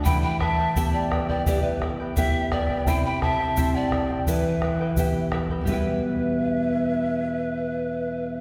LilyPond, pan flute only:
\new Staff \with { instrumentName = "Pan flute" } { \time 4/4 \key e \minor \tempo 4 = 86 g''16 g''16 e''8. d''8 d''16 g'16 b'16 r8 e''8 d''8 | g''16 g''16 e''8. d''8. b'4. r8 | b'1 | }